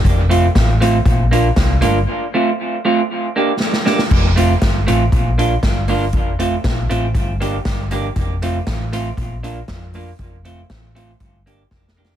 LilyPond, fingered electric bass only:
\new Staff \with { instrumentName = "Fingered electric bass" } { \clef bass \time 4/4 \key f \major \tempo 4 = 118 f,,4 a,,4 bes,,4 c,8 g,,8 | r1 | f,,4 g,,8 a,,8 bes,,4 g,,4 | f,,4 bes,,8 a,,8 g,,4 g,,4 |
f,,4 a,,4 bes,,4 f,4 | f,,4 a,,4 g,,4 f,,4 | }